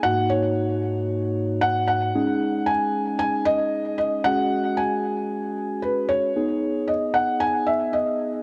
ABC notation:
X:1
M:4/4
L:1/8
Q:1/4=114
K:G#m
V:1 name="Felt piano"
f c4- c f f- | f2 g2 g d2 d | f2 g4 B c- | c2 d f g e d2 |]
V:2 name="Synth keys"
[G,,A,DF]8 | [G,CDG]8 | [G,CFG]8 | [B,DG]8 |]